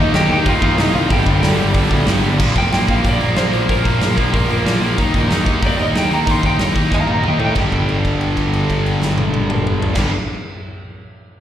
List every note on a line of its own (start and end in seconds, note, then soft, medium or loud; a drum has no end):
0.00 0.11 D#3 medium
0.00 0.43 D#3 loud
0.00 0.12 A#3 medium
0.00 0.45 A#3 loud
0.00 0.12 D#4 loud
0.00 0.13 D#4 medium
0.00 0.45 D#4 loud
0.00 0.13 D#5 medium
0.12 0.25 D#2 medium
0.12 0.29 D#3 medium
0.12 0.30 A#3 loud
0.12 0.28 D#4 loud
0.12 0.29 G4 medium
0.12 0.31 G5 loud
0.12 snare loud
0.12 open hi-hat medium
0.29 0.41 D#2 loud
0.29 0.43 D#3 medium
0.29 0.45 A#3 medium
0.29 0.45 D#4 loud
0.29 0.45 G4 medium
0.29 0.47 G5 loud
0.44 0.57 D#2 loud
0.44 0.62 D#3 medium
0.44 0.63 A#3 loud
0.44 0.61 D#4 loud
0.44 0.61 F4 medium
0.44 kick loud
0.44 open hi-hat medium
0.48 0.62 F5 medium
0.62 0.73 D#2 loud
0.62 0.76 D#3 medium
0.62 0.78 A#3 medium
0.62 0.77 D#4 medium
0.62 0.77 F4 medium
0.62 0.80 F5 loud
0.62 kick loud
0.77 0.90 C2 loud
0.77 0.93 D#3 loud
0.77 0.94 A#3 loud
0.77 0.92 D#4 loud
0.77 0.93 D#4 medium
0.77 0.95 D#5 medium
0.77 snare loud
0.77 open hi-hat medium
0.94 1.05 C2 loud
0.94 1.09 D#3 medium
0.94 1.10 A#3 medium
0.94 1.09 D#4 loud
0.94 1.09 F4 medium
0.94 1.11 F5 medium
1.09 1.22 G1 medium
1.09 1.26 G2 loud
1.09 1.24 D3 loud
1.09 1.24 G3 loud
1.09 2.03 G4 medium
1.09 2.04 G5 loud
1.09 kick loud
1.09 open hi-hat medium
1.25 1.38 G1 medium
1.25 1.39 G2 medium
1.25 1.41 D3 medium
1.25 1.41 G3 medium
1.25 kick medium
1.40 1.54 D2 medium
1.40 1.57 G2 medium
1.40 1.57 D3 loud
1.40 1.57 G3 loud
1.40 snare loud
1.40 open hi-hat medium
1.58 1.70 G1 medium
1.58 1.71 G2 medium
1.58 1.71 D3 medium
1.58 1.72 G3 medium
1.72 1.86 G1 medium
1.72 1.88 G2 medium
1.72 1.88 D3 loud
1.72 1.87 G3 loud
1.72 kick loud
1.72 open hi-hat medium
1.88 2.02 D2 loud
1.88 2.04 G2 medium
1.88 2.05 D3 medium
1.88 2.06 G3 medium
1.88 kick medium
2.05 2.19 G1 loud
2.05 2.22 G2 medium
2.05 2.21 D3 loud
2.05 2.20 G3 loud
2.05 snare loud
2.05 open hi-hat medium
2.21 2.35 G1 loud
2.21 2.38 G2 medium
2.21 2.37 D3 medium
2.21 2.37 G3 loud
2.37 2.52 A#1 medium
2.37 2.56 A#2 medium
2.37 2.55 F3 medium
2.37 2.55 A#3 loud
2.37 kick loud
2.37 crash loud
2.55 2.69 F1 medium
2.55 2.71 A#2 medium
2.55 2.72 F3 medium
2.55 2.73 A#3 medium
2.55 2.72 G5 medium
2.55 kick medium
2.55 open hi-hat medium
2.72 2.85 A#1 loud
2.72 2.89 A#2 medium
2.72 2.89 F3 medium
2.72 2.87 A#3 medium
2.72 2.91 G5 medium
2.72 snare loud
2.72 open hi-hat medium
2.88 3.01 A#1 medium
2.88 3.02 A#2 medium
2.88 3.03 F3 medium
2.88 3.04 A#3 medium
2.88 3.05 F5 medium
2.88 kick medium
2.88 open hi-hat medium
3.03 3.18 A#1 medium
3.03 3.21 A#2 loud
3.03 3.20 F3 loud
3.03 3.20 A#3 loud
3.03 kick loud
3.03 open hi-hat medium
3.09 3.37 D5 medium
3.20 3.34 A#1 medium
3.20 3.35 A#2 medium
3.20 3.37 F3 medium
3.20 3.38 A#3 medium
3.20 open hi-hat medium
3.36 3.50 A#1 medium
3.36 3.52 A#2 medium
3.36 3.52 F3 medium
3.36 3.51 A#3 loud
3.36 3.68 C5 medium
3.36 snare loud
3.36 open hi-hat medium
3.52 3.66 A#1 medium
3.52 3.68 A#2 medium
3.52 3.68 F3 medium
3.52 3.69 A#3 medium
3.52 open hi-hat medium
3.69 3.82 A#1 medium
3.69 3.84 A#2 medium
3.69 3.83 F3 medium
3.69 3.83 A#3 loud
3.69 4.63 A#4 medium
3.69 kick loud
3.69 open hi-hat medium
3.84 3.99 A#1 medium
3.84 3.98 A#2 medium
3.84 3.99 F3 medium
3.84 4.00 A#3 medium
3.84 kick medium
3.84 open hi-hat medium
3.99 4.15 A#1 medium
3.99 4.16 A#2 medium
3.99 4.15 F3 medium
3.99 4.15 A#3 medium
3.99 snare loud
3.99 open hi-hat medium
4.16 4.31 A#1 medium
4.16 4.30 A#2 medium
4.16 4.30 F3 medium
4.16 4.32 A#3 loud
4.16 kick medium
4.16 open hi-hat medium
4.31 4.47 A#1 loud
4.31 4.48 A#2 loud
4.31 4.48 F3 loud
4.31 4.48 A#3 loud
4.31 kick loud
4.31 open hi-hat medium
4.48 4.63 A#1 medium
4.48 4.63 A#2 medium
4.48 4.64 F3 medium
4.48 4.66 A#3 medium
4.48 open hi-hat medium
4.64 4.78 A#1 loud
4.64 4.81 A#2 medium
4.64 4.81 F3 medium
4.64 4.81 A#3 medium
4.64 snare loud
4.64 open hi-hat medium
4.81 4.94 A#1 medium
4.81 4.97 A#2 medium
4.81 4.97 F3 medium
4.81 4.98 A#3 medium
4.81 open hi-hat medium
4.97 5.12 D#2 medium
4.97 5.14 D#3 medium
4.97 5.13 A#3 medium
4.97 5.12 D#4 loud
4.97 kick loud
4.97 open hi-hat medium
5.13 5.28 A#1 medium
5.13 5.28 D#3 medium
5.13 5.29 A#3 medium
5.13 5.30 D#4 medium
5.13 kick medium
5.13 open hi-hat medium
5.29 5.44 D#2 medium
5.29 5.45 D#3 medium
5.29 5.45 A#3 medium
5.29 5.44 D#4 medium
5.29 snare loud
5.29 open hi-hat medium
5.44 5.60 D#2 medium
5.44 5.59 D#3 medium
5.44 5.61 A#3 medium
5.44 5.61 D#4 medium
5.44 kick medium
5.44 open hi-hat medium
5.61 5.75 D#2 medium
5.61 5.78 D#3 loud
5.61 5.77 A#3 loud
5.61 5.76 D#4 loud
5.61 kick loud
5.61 open hi-hat medium
5.66 5.80 D5 loud
5.77 5.92 D#2 medium
5.77 5.93 D#3 medium
5.77 5.94 A#3 medium
5.77 5.94 D#4 medium
5.77 open hi-hat soft
5.82 5.96 D#5 medium
5.94 6.08 D#2 medium
5.94 6.10 D#3 medium
5.94 6.10 A#3 medium
5.94 6.09 D#4 medium
5.94 snare loud
5.94 open hi-hat medium
5.98 6.12 G5 loud
6.10 6.24 D#2 medium
6.10 6.24 D#3 medium
6.10 6.25 A#3 medium
6.10 6.25 D#4 medium
6.10 6.30 A#5 medium
6.10 open hi-hat medium
6.25 6.40 D#2 medium
6.25 6.42 D#3 medium
6.25 6.41 A#3 medium
6.25 6.41 D#4 medium
6.25 kick loud
6.25 open hi-hat medium
6.30 6.44 C6 medium
6.42 6.57 D#2 medium
6.42 6.57 D#3 medium
6.42 6.58 A#3 medium
6.42 6.59 D#4 medium
6.42 kick medium
6.46 6.76 G5 loud
6.59 6.73 D#2 medium
6.59 6.74 D#3 medium
6.59 6.73 A#3 medium
6.59 6.73 D#4 medium
6.59 snare loud
6.59 open hi-hat medium
6.74 6.89 D#2 medium
6.74 6.89 D#3 medium
6.74 6.89 A#3 medium
6.74 6.90 D#4 medium
6.74 kick medium
6.74 open hi-hat medium
6.90 7.05 D#2 medium
6.90 7.07 D#3 loud
6.90 7.06 A#3 loud
6.90 7.06 D#4 loud
6.90 kick medium
6.90 snare medium
6.94 7.09 F5 medium
6.94 7.09 A#5 medium
7.07 7.21 D#2 medium
7.07 7.21 D#3 medium
7.07 7.22 A#3 medium
7.07 7.23 D#4 medium
7.07 7.24 F5 medium
7.07 7.25 A#5 medium
7.07 high tom medium
7.22 7.37 D#2 medium
7.22 7.38 D#3 medium
7.22 7.38 A#3 medium
7.22 7.37 D#4 medium
7.22 mid tom medium
7.28 7.41 D#5 medium
7.28 7.42 G5 medium
7.38 7.53 A2 medium
7.38 7.55 D#3 medium
7.38 7.55 A#3 medium
7.38 7.54 D#4 medium
7.38 floor tom medium
7.45 7.58 G5 medium
7.54 9.87 G1 medium
7.54 9.93 G2 medium
7.54 9.96 D3 medium
7.54 9.97 G3 medium
7.54 kick loud
7.54 crash medium
7.72 kick medium
7.72 crash soft
7.89 crash soft
8.05 kick medium
8.05 crash soft
8.21 crash soft
8.37 kick medium
8.37 crash medium
8.53 crash soft
8.70 kick medium
8.70 crash soft
8.86 crash soft
9.02 snare medium
9.18 high tom loud
9.34 high tom loud
9.50 mid tom loud
9.67 mid tom loud
9.82 floor tom loud
9.93 10.09 G1 medium
9.93 10.09 G2 loud
9.93 10.10 D3 loud
9.93 kick loud
9.93 snare medium
9.93 crash loud
9.98 10.11 G3 loud